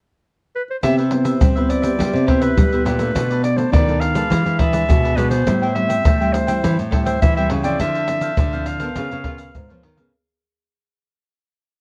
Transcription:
0.55 clarinet B4
0.70 clarinet C5
0.83 nylon-string guitar C3 B3 E4 G4, cavaquinho G4 B4 C5 E5, clarinet E5, pandeiro, shaker, surdo
0.97 cavaquinho B4 C5 E5, pandeiro, shaker
1.11 nylon-string guitar B3 E4 G4, clarinet C5, muted cavaquinho stroke, pandeiro
1.24 cavaquinho B4 C5 E5, pandeiro, shaker
1.41 nylon-string guitar G3 C4, cavaquinho G4 B4 C5 E5, pandeiro, shaker, surdo
1.56 nylon-string guitar B3 E4 G4, cavaquinho B4 C5 E5, pandeiro, shaker
1.69 clarinet D5, pandeiro, shaker
1.82 nylon-string guitar B3 E4 G4, cavaquinho B4 C5 E5, pandeiro, shaker
1.98 nylon-string guitar C3 G3, cavaquinho G4 B4 C5 E5, pandeiro, shaker, surdo
2.13 nylon-string guitar C3, muted cavaquinho stroke, pandeiro, shaker
2.27 nylon-string guitar B3 E4 G4, cavaquinho G4 B4 C5 E5, clarinet C5, pandeiro, surdo
2.41 cavaquinho B4 C5 E5, clarinet B4, pandeiro, shaker
2.57 nylon-string guitar G3, pandeiro, shaker, surdo
2.72 nylon-string guitar B3 E4 G4, cavaquinho B4 C5 E5, pandeiro, shaker
2.85 nylon-string guitar A#2, cavaquinho G4 B4 C5 E5, clarinet B4, pandeiro, shaker
2.98 nylon-string guitar A3 D4 F4, cavaquinho B4 C5 E5, pandeiro, shaker
3.15 nylon-string guitar B2, cavaquinho F4 A4 B4 D5, pandeiro, shaker, surdo
3.30 cavaquinho A4 B4 D5, pandeiro, shaker
3.43 clarinet D5, muted cavaquinho stroke, pandeiro, shaker
3.56 nylon-string guitar A3 D4 F4, cavaquinho A4 B4 D5, clarinet C5, pandeiro, shaker
3.72 nylon-string guitar B2 D#3, cavaquinho F4 A4 B4 D5, clarinet D5, pandeiro, shaker, surdo
3.87 nylon-string guitar A3 D4 F4, cavaquinho A4 B4 D5, pandeiro, shaker
4.00 clarinet F5, pandeiro, shaker
4.15 nylon-string guitar G#3 D4 F4, cavaquinho A4 B4 D5, pandeiro, shaker
4.30 nylon-string guitar E3, cavaquinho G#4, pandeiro, shaker, surdo
4.46 nylon-string guitar E3, muted cavaquinho stroke, pandeiro, shaker
4.59 cavaquinho E4 G#4 B4 D5, clarinet E5, pandeiro, surdo
4.72 nylon-string guitar G#3 D4 F4, cavaquinho G#4 B4 D5, pandeiro, shaker
4.89 nylon-string guitar B2, pandeiro, shaker, surdo
5.04 cavaquinho G#4 B4 D5, pandeiro, shaker
5.17 nylon-string guitar B2 G#3 D4 F4, cavaquinho E4 G#4 B4 D5, clarinet B4, pandeiro, shaker
5.30 cavaquinho G#4 B4 D5, clarinet C5, pandeiro, shaker
5.47 nylon-string guitar A2 G3 C4 E4, cavaquinho A4 C5 E5 G5, pandeiro, shaker, surdo
5.62 cavaquinho C5 E5 G5, pandeiro, shaker
5.75 nylon-string guitar G3 C4 E4, clarinet E5, muted cavaquinho stroke, pandeiro
5.88 cavaquinho C5 E5 G5, pandeiro, shaker
6.04 nylon-string guitar E3 A3, cavaquinho A4 C5 E5 G5, pandeiro, shaker, surdo
6.20 nylon-string guitar G3 C4 E4, cavaquinho C5 E5 G5, pandeiro, shaker
6.32 clarinet C5, pandeiro, shaker
6.47 nylon-string guitar G3 C4 E4, cavaquinho C5 E5 G5, pandeiro, shaker
6.63 nylon-string guitar A2 E3, cavaquinho A4 C5 E5 G5, pandeiro, shaker, surdo
6.78 nylon-string guitar A2, muted cavaquinho stroke, pandeiro, shaker
6.91 nylon-string guitar G3 C4 E4, cavaquinho A4 C5 E5 G5, pandeiro, surdo
7.05 clarinet C5, cavaquinho C5 E5 G5, pandeiro, shaker
7.22 nylon-string guitar E3, clarinet E5, pandeiro, shaker, surdo
7.36 nylon-string guitar G3 C4 E4, cavaquinho C5 E5 G5, clarinet E5, pandeiro, shaker
7.49 nylon-string guitar C#3, cavaquinho A4 C5 E5 G5, pandeiro
7.63 nylon-string guitar F3 C4 E4, cavaquinho C5 E5 G5, clarinet D5, pandeiro, shaker
7.79 nylon-string guitar D3, cavaquinho D4 A4 C5 F5, clarinet E5, pandeiro, shaker, surdo
7.95 cavaquinho A4 C5 F5, pandeiro, shaker
8.08 nylon-string guitar F3 C4 E4, muted cavaquinho stroke, pandeiro, shaker
8.21 cavaquinho A4 C5 F5, pandeiro, shaker
8.37 nylon-string guitar A2 D3, cavaquinho D4 A4 C5 F5, pandeiro, shaker, surdo
8.53 nylon-string guitar F3 C4 E4, cavaquinho A4 C5 F5, pandeiro, shaker
8.66 clarinet F5, pandeiro, shaker
8.80 nylon-string guitar B3 F4 A#4, cavaquinho A4 C5 F5, pandeiro, shaker
8.96 nylon-string guitar C#3, cavaquinho F4 B4 C#5 F5, pandeiro, shaker, surdo
9.12 nylon-string guitar C#3, muted cavaquinho stroke, pandeiro, shaker
9.24 nylon-string guitar B3 F4 A#4, cavaquinho F4 B4 C#5 F5, pandeiro, surdo
9.38 cavaquinho B4 C#5 F5, pandeiro, shaker
9.55 nylon-string guitar G#2, pandeiro, shaker, surdo
9.69 nylon-string guitar F3 B3 F4 A#4, cavaquinho B4 C#5 F5, pandeiro, shaker
9.83 nylon-string guitar D#3, cavaquinho F4 B4 C#5 F5, pandeiro
9.97 nylon-string guitar C#3 B3 F4 A#4, cavaquinho B4 C#5 F5, pandeiro, shaker

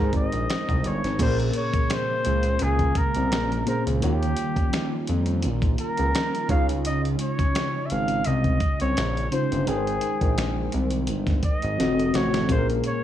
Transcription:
Already playing: analog synth bass G#2, tine electric piano G#3 D#4 G4 A#4 C5, flugelhorn A#4
0.13 analog synth bass G#1, flugelhorn D#5, kick, closed hi-hat
0.32 analog synth bass A#1, closed hi-hat
0.50 finger snap, snare, closed hi-hat
0.69 analog synth bass C2, kick, closed hi-hat
0.84 analog synth bass G1, flugelhorn C#5, closed hi-hat
1.04 analog synth bass G#1, snare, closed hi-hat
1.19 analog synth bass A#1, tine electric piano A#2 A#3 C#4 G#4 A#4, analog synth pad C#3 G#3 A#3 C#4, flugelhorn C5, kick, closed hi-hat, crash
1.28 tine electric piano A#4
1.40 closed hi-hat
1.53 flugelhorn C#5, closed hi-hat
1.74 kick, closed hi-hat
1.90 flugelhorn C5, finger snap, snare, closed hi-hat
2.25 analog synth bass C#2, closed hi-hat
2.43 closed hi-hat
2.59 analog synth bass C#2, flugelhorn G#4, closed hi-hat
2.79 kick, closed hi-hat
2.95 flugelhorn A#4, kick, closed hi-hat
3.15 analog synth bass C2, closed hi-hat
3.32 analog synth bass A#1, finger snap, snare, closed hi-hat
3.52 closed hi-hat
3.65 tine electric piano A#2 A#3 C#4 G#4 C5, flugelhorn A#4, closed hi-hat
3.87 analog synth bass C#2, closed hi-hat
4.01 analog synth bass D#2, tine electric piano D#3 A#3 F4 F#4 C#5, analog synth pad G3 C#4 D#4 F4, flugelhorn G4, closed hi-hat
4.09 tine electric piano G4
4.23 closed hi-hat
4.37 closed hi-hat
4.56 kick, closed hi-hat
4.73 finger snap, snare, closed hi-hat
5.07 analog synth bass F2, closed hi-hat
5.26 closed hi-hat
5.42 analog synth bass A#1, closed hi-hat
5.62 kick, closed hi-hat
5.78 flugelhorn A#4, closed hi-hat
5.97 analog synth bass C#2, closed hi-hat
6.15 finger snap, snare, closed hi-hat
6.35 closed hi-hat
6.48 analog synth bass C#2, tine electric piano C#3 C#4 D#4 F4 C#5, analog synth pad G#3, flugelhorn F5, kick, closed hi-hat
6.69 closed hi-hat
6.85 flugelhorn D#5, closed hi-hat
7.05 closed hi-hat
7.19 flugelhorn C#5, closed hi-hat
7.39 kick, closed hi-hat
7.55 finger snap, snare, closed hi-hat
7.86 flugelhorn E5
7.90 analog synth bass G#1, flugelhorn F5, closed hi-hat
8.08 closed hi-hat
8.24 analog synth bass C2, flugelhorn D#5, closed hi-hat
8.44 kick, closed hi-hat
8.60 kick, closed hi-hat
8.80 analog synth bass C2, flugelhorn C#5, closed hi-hat
8.97 analog synth bass A#1, finger snap, snare, closed hi-hat
9.17 closed hi-hat
9.31 tine electric piano C#3 C#4 D#4 F4 C5, flugelhorn C5, closed hi-hat
9.52 analog synth bass G1, closed hi-hat
9.67 analog synth bass G#1, analog synth pad D#3 G5, tine electric piano G#3 D#4 A#4 B4 G5, flugelhorn G#4, closed hi-hat
9.76 tine electric piano C5
9.87 closed hi-hat
10.01 closed hi-hat
10.21 analog synth bass A#1, kick, closed hi-hat
10.38 finger snap, snare, closed hi-hat
10.72 analog synth bass C2, closed hi-hat
10.90 closed hi-hat
11.07 analog synth bass G1, closed hi-hat
11.27 kick, snare, closed hi-hat
11.43 flugelhorn D#5, kick, closed hi-hat
11.62 analog synth bass G#1, closed hi-hat
11.78 analog synth bass F1, analog synth pad D#3 F3 A3 F#4, tine electric piano F3 C4 F#4 A4 D#5, snare, closed hi-hat
11.99 closed hi-hat
12.13 analog synth bass A1, tine electric piano C3 F3 F#4 A4 D#5, flugelhorn C#5, snare, closed hi-hat
12.34 snare, closed hi-hat
12.49 analog synth bass A#1, tine electric piano A#2 A#3 C#4 G#4 A#4, analog synth pad C#3 G#3 A#3 C#4, flugelhorn C5, kick, closed hi-hat
12.58 tine electric piano A#4
12.70 closed hi-hat
12.84 flugelhorn C#5, closed hi-hat

